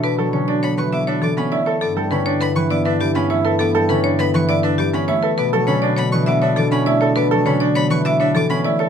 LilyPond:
<<
  \new Staff \with { instrumentName = "Violin" } { \time 3/4 \key b \minor \tempo 4 = 101 d'''16 r8. b''16 cis'''16 d'''16 e''16 d'''16 b''16 r8 | d'''16 r16 b''16 r16 b''16 cis'''16 d'''16 e''16 d'''16 b''16 r8 | d'''16 r16 b''16 r16 b''16 cis'''16 d'''16 e''16 d'''16 b''16 r8 | d'''16 r16 b''16 r16 b''16 cis'''16 d'''16 e''16 d'''16 b''16 r8 |
d'''16 r16 b''16 r16 b''16 cis'''16 d'''16 e''16 d'''16 b''16 r8 | }
  \new Staff \with { instrumentName = "Marimba" } { \time 3/4 \key b \minor b'16 r16 cis''16 d''16 cis''16 r16 e''16 cis''16 a'16 r16 d''16 cis''16 | a'16 r16 b'16 cis''16 b'16 r16 d''16 b'16 g'16 r16 cis''16 b'16 | a'16 r16 b'16 cis''16 b'16 r16 d''16 b'16 g'16 r16 cis''16 b'16 | b'16 r16 cis''16 d''16 cis''16 r16 e''16 cis''16 a'16 r16 d''16 cis''16 |
b'16 r16 cis''16 d''16 cis''16 r16 e''16 cis''16 a'16 r16 d''16 cis''16 | }
  \new Staff \with { instrumentName = "Grand piano" } { \time 3/4 \key b \minor r16 a'16 cis'16 d'16 r16 b'16 e'16 d'16 r16 cis'16 e'16 a'16 | r16 a'16 cis'16 d'16 r16 b'16 e'16 d'16 r16 cis'16 e'16 a'16 | r16 a'16 cis'16 d'16 r16 b'16 e'16 d'16 r16 cis'16 e'16 a'16 | r16 a'16 cis'16 d'16 r16 b'16 e'16 d'16 r16 cis'16 e'16 a'16 |
r16 a'16 cis'16 d'16 r16 b'16 e'16 d'16 r16 cis'16 e'16 a'16 | }
  \new Staff \with { instrumentName = "French horn" } { \time 3/4 \key b \minor d'2~ d'8. r16 | e'2.~ | e'2~ e'8. r16 | d'2.~ |
d'2~ d'8. r16 | }
  \new Staff \with { instrumentName = "Harp" } { \time 3/4 \key b \minor <d e fis a b>16 fis16 d8 b16 e16 b8 e16 b16 a8 | b16 g16 d8 b16 e16 b8 e16 b16 a8 | b16 g16 d8 b16 e16 b8 e16 b16 a8 | b16 fis16 d8 b16 e16 b8 e16 b16 a8 |
b16 fis16 d8 b16 e16 b8 e16 b16 a8 | }
  \new Staff \with { instrumentName = "Bass clarinet" } { \clef bass \time 3/4 \key b \minor b,2. | g,2.~ | g,2. | b,2.~ |
b,2. | }
>>